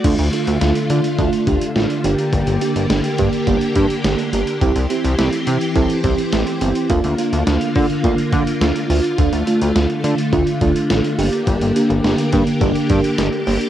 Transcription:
0.04 D2 D3 A3 D4 F4, kick, closed hi-hat, crash
0.19 D2, closed hi-hat
0.33 A3 D4 F4, closed hi-hat
0.47 D2, closed hi-hat
0.61 D2 A3 D4 F4, snare, closed hi-hat
0.75 closed hi-hat
0.90 D3 A3 D4 F4, closed hi-hat
1.04 closed hi-hat
1.18 D2 A3 D4 F4, kick, closed hi-hat
1.33 closed hi-hat
1.47 D2 A3 D4 G4, kick, closed hi-hat
1.61 closed hi-hat
1.76 A1 A3 D4 F4, snare, closed hi-hat
1.90 closed hi-hat
2.04 G1 A#3 D4 G4, closed hi-hat
2.19 closed hi-hat
2.33 G1, kick, closed hi-hat
2.47 G1, closed hi-hat
2.61 A#3 D4 G4, closed hi-hat
2.76 G1, closed hi-hat
2.90 G1 A#3 D4 G4, snare, closed hi-hat
3.04 closed hi-hat
3.18 G2 A#3 D4 G4, kick, closed hi-hat
3.33 closed hi-hat
3.47 G1 A#3 D4 G4, kick, closed hi-hat
3.61 closed hi-hat
3.75 G2 A#3 D4 G4, kick, closed hi-hat
3.90 closed hi-hat
4.04 G1 A#3 D4 G4, snare, closed hi-hat
4.19 closed hi-hat
4.33 G1 A#3 D4 G4, closed hi-hat
4.47 closed hi-hat
4.61 C2 E3 C4 E4 G4, kick, closed hi-hat
4.75 C2, closed hi-hat
4.90 C4 E4 G4, closed hi-hat
5.04 C2, closed hi-hat
5.18 C2 C4 E4 G4, snare, closed hi-hat
5.33 closed hi-hat
5.47 C3 C4 E4 G4, closed hi-hat
5.61 closed hi-hat
5.75 C2 C4 E4 A4, kick, closed hi-hat
5.90 closed hi-hat
6.04 C2 C4 E4 G4, kick, closed hi-hat
6.18 closed hi-hat
6.33 A1 C4 E4 G4, snare, closed hi-hat
6.47 closed hi-hat
6.61 G1 C4 E4 G4, closed hi-hat
6.75 closed hi-hat
6.90 D2 D3 A#3 D4 F4, kick, closed hi-hat
7.04 D2, closed hi-hat
7.18 A#3 D4 F4, closed hi-hat
7.33 D2, closed hi-hat
7.47 D2 A#3 D4 F4, snare, closed hi-hat
7.61 closed hi-hat
7.75 D3 A#3 D4 F4, kick, open hi-hat
7.90 closed hi-hat
8.04 D2 A#3 D4 F4, kick, closed hi-hat
8.18 closed hi-hat
8.33 D3 A#3 D4 F4, kick, closed hi-hat
8.47 closed hi-hat
8.61 D2 A#3 D4 F4, snare, closed hi-hat
8.76 closed hi-hat
8.90 D2 A#3 D4 F4, open hi-hat
9.04 closed hi-hat
9.18 D2 D3 A3 D4 F4, kick, closed hi-hat
9.33 D2, closed hi-hat
9.47 A3 D4 F4, closed hi-hat
9.61 D2, closed hi-hat
9.76 D2 A3 D4 F4, snare, closed hi-hat
9.90 closed hi-hat
10.04 D3 A3 D4 F4, closed hi-hat
10.18 closed hi-hat
10.33 D2 A3 D4 F4, kick, closed hi-hat
10.47 closed hi-hat
10.61 D2 A3 D4 F4, kick, closed hi-hat
10.76 closed hi-hat
10.90 A1 A3 D4 F4, snare, closed hi-hat
11.04 closed hi-hat
11.18 G1 A#3 D4 G4, open hi-hat
11.33 closed hi-hat
11.47 G1, kick, closed hi-hat
11.61 G1, closed hi-hat
11.76 A#3 D4 G4, closed hi-hat
11.90 G1, closed hi-hat
12.04 G1 A#3 D4 G4, snare, closed hi-hat
12.18 closed hi-hat
12.33 G2 A#3 D4 G4, kick, closed hi-hat
12.47 closed hi-hat
12.61 G1 A#3 D4 G4, kick, closed hi-hat
12.75 closed hi-hat
12.90 G2 A#3 D4 G4, kick, closed hi-hat
13.04 closed hi-hat
13.18 G1 A#3 D4 G4, snare, closed hi-hat
13.33 closed hi-hat
13.47 G1 A#3 D4 G4, open hi-hat
13.61 closed hi-hat

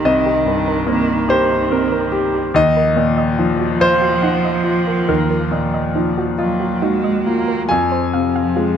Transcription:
Already playing: D#3 G4
0.05 C2 C4 D#5
0.26 G4
0.46 G2 A#4
0.68 A#4
0.87 A#3 C4
1.10 D#4
1.29 G4 A#4 C5
1.52 D#4
1.72 C4 A#4
1.92 A#4
2.12 G4
2.34 G4
2.54 D#2 F3 D#4 D#5
2.77 A#4
2.96 A#2 D#5
3.18 D#5
3.39 F3 D#4
3.59 F#4
3.80 F4 C5 D#5
4.02 F#4
4.22 D#4 F#5
4.45 D#5
4.64 F4
4.87 A#4
5.08 D#2 D#4 A#4
5.30 A#4
5.51 A#2 D#5
5.74 D#5
5.95 F3 D#4
6.18 F#4
6.38 F#3 F4 D#5
6.60 F#4
6.82 G#3 D#4 F#4
7.04 D#5
7.26 A#3 F4
7.48 A#4
7.69 F2 F3 F4 G#5
7.92 C5
8.14 C3 F5
8.36 F5
8.56 G#3 F4

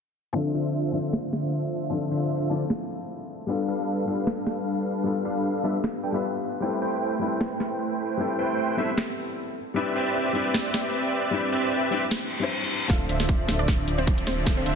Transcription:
0.33 D3 F3 C4 D4 F4 C5 E5
0.37 A4
0.54 D3 D4 F4 C5 E5
0.92 D3 F3 C4 D4 F4 C5 E5
0.96 A4
1.13 snare
1.33 snare
1.90 F3 C4 D4 E5
1.94 A4
2.11 D3 D4 F4 C5 E5
2.50 D3 F3 C4 D4 E4 F4 A4 C5 D5
2.70 snare
3.47 G3 B3 D4 F4 A4 B4 F5
3.51 A4
3.68 G3 D4 A4 B4 F5
4.05 G3 B3 D4 F4 A4 B4 F5
4.27 snare
4.47 snare
5.03 G3 B3 D4 F4
5.07 A4
5.25 G3 D4 A4 B4 F5
5.63 G3 B3 D4 F4 A4 B4 E5
5.84 snare
6.03 G3 D4 A4 B4 G5
6.12 G3 B3 D4 F4 A4 B4 E5
6.16 B4
6.60 G3 A3 C4 E4 A4 B4 C5 G5
6.82 A3 E4 B4 C5 G5
7.19 G3 A3 C4 E4 B4 C5 G5
7.23 A4
7.41 snare
7.60 snare
8.17 G3 C4 E4
8.21 A4
8.39 A3 E4 B4 C5 G5
8.77 G3 A3 B3 C4 E4 A4 B4 C5 E5
8.98 snare
9.74 G3 C4 D4 E4 G4 B4 D5 E5
9.96 C4 G4 B4 D5 E5
10.33 G3 C4 D4 E4 G4 B4 D5 E5
10.37 B4
10.54 snare
10.74 snare
11.31 G3 C4 D4 E4
11.35 B4
11.52 C4 G4 B4 D5 E5
11.91 G3 C4 D4 E4 G4 B4 D5 E5
12.11 snare, reverse cymbal
12.39 G3 C4 D4 E4
12.43 C5
12.88 D1 D3 F3 C4 D4 F4 C5 D5 E5 F5, kick, snare, closed hi-hat, riser
12.92 A4
13.09 D1 D3 D4 F4 C5 E5, closed hi-hat
13.20 snare
13.29 kick, closed hi-hat
13.47 D1 D3 F3 C4 D4 F4 A4 C5 E5, snare, closed hi-hat
13.59 D4 D5
13.68 kick, snare, closed hi-hat
13.88 closed hi-hat
13.98 C4 C5
14.07 kick, closed hi-hat
14.18 closed hi-hat
14.27 C4 C5, snare, closed hi-hat
14.45 F3 C4 D4 E5, kick, snare, closed hi-hat
14.49 A4
14.57 C4 C5
14.66 D1 D3 D4 F4 C5 E5, closed hi-hat

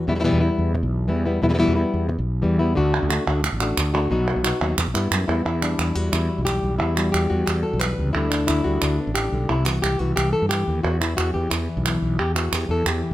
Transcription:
Already playing: E2
0.07 E2 B2 E3 G3 B3 E4
0.15 E3 G3 B3 E4
0.19 E3 G3 B3 E4
0.24 B2 E3 G3 B3 E4
0.33 E2
0.41 G3 B3 E4
0.58 E2
0.74 muted nylon-string guitar stroke
0.83 B1
1.08 E2 E3 G3 B3 E4
1.25 G3 B3 E4
1.42 E2 B2 E3 G3 B3 E4
1.49 E3 G3 B3 E4
1.54 E3 G3 B3 E4
1.58 B2 E3 G3 B3 E4
1.68 E2
1.76 G3 B3 E4
1.94 E2
2.09 muted nylon-string guitar stroke
2.19 B1
2.42 E2 E3 G3 B3 E4
2.59 G3 B3 E4
2.75 D2 D3 A3 D4 F#4
3.03 D2
3.09 A3 D4 F#4, clap
3.26 D2 D3 A3 D4 F#4
3.43 muted nylon-string guitar stroke, clap
3.52 A1
3.60 A3 D4 F#4, clap
3.77 D2, clap
3.94 A3 D4 F#4
4.10 B1 B2 F#3 B3 D#4 F#4
4.28 clap
4.36 B1
4.44 B3 D#4 F#4, clap
4.61 D#2 F#3 B3 D#4 F#4
4.78 E2, muted nylon-string guitar stroke, clap
4.87 B1
4.94 G2 G3 B3 E4, clap
5.11 F#2, clap
5.28 E2 G3 B3 E4
5.45 E2 E4, clap
5.62 G3 D4, clap
5.78 E2 E4, clap
5.95 E2 G3 F#4
6.12 E2 E4, clap
6.38 B1
6.45 G3 G4, clap
6.63 B1
6.79 E2 E4
6.96 G3 F#4, clap
7.12 E2 G4, clap
7.30 E2 G3 F#4
7.46 E2 G4, clap
7.63 A4
7.73 B1
7.80 B2 B4, clap
7.98 C#2 C3
8.13 D2 D3 G3 B3 E4
8.30 D4, clap
8.47 D2 E4, clap
8.64 D2 G3 F#4
8.82 D2 D4, clap
9.00 B3
9.07 A1
9.15 E3 G4, clap
9.32 B1 D3
9.49 C2 C3 E4
9.65 E3 F#4, clap
9.82 C2 G4, clap
9.99 C2 E3 F#4
10.16 C2 G4, clap
10.33 A4
10.42 G2
10.49 E3 G4, clap
10.68 D#2
10.83 E2 F#4
11.01 E3 E4, clap
11.17 E2 F#4, clap
11.34 E2 E3 G4
11.50 E2 E4, clap
11.77 B1
11.86 E3, clap
12.02 B1
12.19 E2 G4
12.35 E3 F#4, clap
12.52 E2 G4, clap
12.69 E2 E3 A4
12.86 E2 G4, clap
13.04 B3

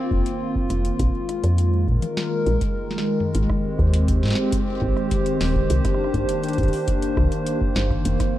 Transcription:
Already playing: D#3 A#3 C4 F4 C5
0.11 F1, kick
0.26 closed hi-hat
0.55 kick
0.70 F1, cross-stick, closed hi-hat
0.85 closed hi-hat
0.99 A#1, kick, cross-stick, closed hi-hat
1.12 G#3
1.29 cross-stick, closed hi-hat
1.44 F2, closed hi-hat
1.58 closed hi-hat
1.79 A#4
1.88 A#2, kick
1.91 kick
1.95 kick
1.99 kick, closed hi-hat, high tom
2.17 snare
2.47 A#1, closed hi-hat
2.61 kick, closed hi-hat
2.91 snare
2.98 snare
3.20 mid tom
3.35 G#1, closed hi-hat
3.50 kick, cross-stick
3.55 C4 G4 C5
3.79 D#2, kick
3.94 closed hi-hat
4.08 kick, closed hi-hat
4.23 G#2, snare
4.25 snare
4.28 snare
4.30 snare
4.33 snare
4.35 snare
4.52 kick, closed hi-hat
4.82 G#1, kick
4.97 cross-stick
5.11 kick, closed hi-hat
5.26 closed hi-hat
5.41 D#1, snare, open hi-hat
5.55 kick
5.70 C2, closed hi-hat
5.76 D4
5.83 A#3, kick, cross-stick, closed hi-hat
5.94 cross-stick
6.04 cross-stick
6.14 G1, kick, closed hi-hat
6.29 closed hi-hat
6.44 closed hi-hat
6.49 closed hi-hat
6.53 closed hi-hat
6.58 G1, kick, closed hi-hat
6.63 kick, closed hi-hat
6.68 kick, closed hi-hat
6.73 open hi-hat
6.88 kick, closed hi-hat, high tom
7.02 closed hi-hat
7.17 C2, kick, cross-stick, high tom
7.32 closed hi-hat
7.46 closed hi-hat
7.61 kick
7.76 G1, snare
7.91 kick, cross-stick
8.05 F1, closed hi-hat
8.14 C4
8.20 kick, cross-stick, closed hi-hat

